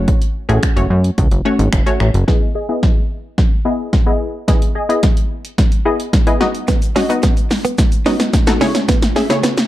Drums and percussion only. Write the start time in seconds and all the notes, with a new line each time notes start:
0.08 kick, closed hi-hat
0.22 closed hi-hat
0.50 closed hi-hat
0.63 finger snap, kick, closed hi-hat
0.77 closed hi-hat
1.04 closed hi-hat
1.18 kick, closed hi-hat
1.31 closed hi-hat
1.59 closed hi-hat
1.73 finger snap, kick, closed hi-hat
1.87 closed hi-hat
2.00 finger snap
2.14 closed hi-hat
2.28 kick, snare
2.83 kick, snare
3.38 kick, snare
3.93 kick, snare
4.48 kick, snare, closed hi-hat
4.62 closed hi-hat
4.90 closed hi-hat
5.03 kick, snare, closed hi-hat
5.17 closed hi-hat
5.45 closed hi-hat
5.58 kick, snare, closed hi-hat
5.72 closed hi-hat
6.00 closed hi-hat
6.13 kick, snare, closed hi-hat
6.27 closed hi-hat
6.41 snare
6.55 closed hi-hat
6.68 kick, snare, closed hi-hat, shaker
6.82 closed hi-hat, shaker
6.96 snare, open hi-hat, shaker
7.10 closed hi-hat, shaker
7.23 kick, snare, closed hi-hat, shaker
7.37 closed hi-hat, shaker
7.51 snare, open hi-hat, shaker
7.65 closed hi-hat, shaker
7.78 kick, snare, closed hi-hat, shaker
7.92 closed hi-hat, shaker
8.06 snare, open hi-hat, shaker
8.20 snare, closed hi-hat, shaker
8.33 kick, snare, closed hi-hat, shaker
8.47 snare, closed hi-hat, shaker
8.61 snare, open hi-hat, shaker
8.75 snare, closed hi-hat, shaker
8.89 kick, snare, closed hi-hat, shaker
9.02 snare, closed hi-hat, shaker
9.16 snare, open hi-hat, shaker
9.30 snare, closed hi-hat, shaker
9.44 snare, closed hi-hat, shaker
9.58 snare, closed hi-hat, shaker